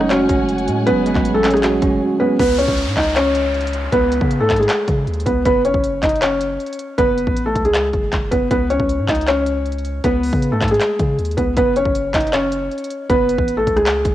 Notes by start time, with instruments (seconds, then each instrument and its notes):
Already playing: 808-style bass F#1, tine electric piano F#3 G#3 A3 C#4, string section C#5 F#5 G#5
0.01 cross-stick
0.10 felt piano C#4 C#5, tine electric piano F#4, clap, closed hi-hat
0.29 808-style bass F#1, tine electric piano C#4, kick, closed hi-hat
0.49 closed hi-hat
0.58 closed hi-hat
0.68 808-style bass A2, tine electric piano G#3, closed hi-hat
0.87 tine electric piano F#3, felt piano B3 B4, closed hi-hat
0.92 808-style bass F#1
1.06 tine electric piano G#3, closed hi-hat
1.15 808-style bass A1, kick, clap
1.25 closed hi-hat
1.34 felt piano A3 A4
1.44 tine electric piano C#4, clap, closed hi-hat
1.50 felt piano G#3 G#4, cross-stick, closed hi-hat
1.57 closed hi-hat
1.63 tine electric piano F#4, clap, closed hi-hat
1.82 808-style bass F#1, tine electric piano C#4, kick, closed hi-hat
2.20 tine electric piano G#3, felt piano B3 B4
2.39 808-style bass C#2, felt piano B3 B4, kick, closed hi-hat, crash, downlifter
2.59 felt piano C#4 C#5, closed hi-hat
2.68 808-style bass C#2, kick
2.78 closed hi-hat
2.87 808-style bass G#2
2.97 808-style bass C#2, felt piano D#4 D#5, kick, clap, closed hi-hat
3.03 closed hi-hat
3.10 closed hi-hat
3.16 felt piano C#4 C#5, clap, closed hi-hat
3.35 closed hi-hat
3.54 closed hi-hat
3.61 closed hi-hat
3.67 closed hi-hat
3.73 closed hi-hat
3.92 808-style bass C#2, felt piano B3 B4, kick, closed hi-hat
4.12 closed hi-hat
4.21 808-style bass C#3, kick
4.31 closed hi-hat
4.40 808-style bass G#2, felt piano A3 A4
4.50 808-style bass G#2, kick, clap, closed hi-hat
4.56 felt piano G#3 G#4, closed hi-hat
4.62 closed hi-hat
4.69 clap, closed hi-hat
4.88 808-style bass C#3, kick, closed hi-hat
5.07 808-style bass D#2, closed hi-hat
5.14 closed hi-hat
5.20 closed hi-hat
5.26 808-style bass C#2, felt piano B3 B4, kick, closed hi-hat
5.45 808-style bass F#1, felt piano B3 B4, kick, closed hi-hat
5.65 felt piano C#4 C#5, closed hi-hat
5.74 808-style bass F#1, kick
5.84 closed hi-hat
6.03 808-style bass F#1, felt piano D#4 D#5, kick, clap, closed hi-hat
6.09 closed hi-hat
6.15 closed hi-hat
6.22 felt piano C#4 C#5, clap, closed hi-hat
6.41 closed hi-hat
6.60 closed hi-hat
6.66 closed hi-hat
6.73 closed hi-hat
6.79 closed hi-hat
6.98 808-style bass F#1, felt piano B3 B4, kick, closed hi-hat
7.18 closed hi-hat
7.27 808-style bass A1, kick
7.36 closed hi-hat
7.46 felt piano A3 A4
7.55 808-style bass C#2, kick, closed hi-hat
7.65 felt piano G#3 G#4, closed hi-hat
7.74 clap, closed hi-hat
7.93 808-style bass F#1, kick, closed hi-hat
8.12 808-style bass F#1, kick, clap, closed hi-hat
8.31 808-style bass F#1, felt piano B3 B4, kick, closed hi-hat
8.51 808-style bass C#2, felt piano B3 B4, kick, closed hi-hat
8.70 felt piano C#4 C#5, closed hi-hat
8.80 808-style bass C#2, kick
8.89 closed hi-hat
8.99 808-style bass G#2
9.08 808-style bass C#2, felt piano D#4 D#5, kick, clap, closed hi-hat
9.15 closed hi-hat
9.21 closed hi-hat
9.27 felt piano C#4 C#5, clap, closed hi-hat
9.46 closed hi-hat
9.66 closed hi-hat
9.72 closed hi-hat
9.78 closed hi-hat
9.85 closed hi-hat
10.04 808-style bass C#2, felt piano B3 B4, kick, closed hi-hat
10.23 open hi-hat
10.33 808-style bass C#3, kick
10.42 closed hi-hat
10.52 808-style bass G#2, felt piano A3 A4
10.61 808-style bass G#2, kick, clap, closed hi-hat
10.68 felt piano G#4, closed hi-hat
10.72 felt piano G#3, closed hi-hat
10.80 clap, closed hi-hat
10.99 808-style bass C#3, kick, closed hi-hat
11.19 808-style bass D#2, closed hi-hat
11.25 closed hi-hat
11.31 closed hi-hat
11.37 808-style bass C#2, felt piano B3 B4, kick, closed hi-hat
11.57 808-style bass F#1, felt piano B3 B4, kick, closed hi-hat
11.76 felt piano C#4 C#5, closed hi-hat
11.85 808-style bass F#1, kick
11.95 closed hi-hat
12.14 808-style bass F#1, felt piano D#4 D#5, kick, clap, closed hi-hat
12.20 closed hi-hat
12.27 closed hi-hat
12.33 felt piano C#4 C#5, clap, closed hi-hat
12.52 closed hi-hat
12.71 closed hi-hat
12.78 closed hi-hat
12.84 closed hi-hat
12.90 closed hi-hat
13.10 808-style bass F#1, felt piano B3 B4, kick, closed hi-hat
13.29 closed hi-hat
13.38 808-style bass A1, kick
13.48 closed hi-hat
13.57 felt piano A3 A4
13.67 808-style bass C#2, kick, closed hi-hat
13.76 felt piano G#3 G#4, cross-stick, closed hi-hat
13.86 clap, closed hi-hat
14.05 808-style bass F#1, kick, closed hi-hat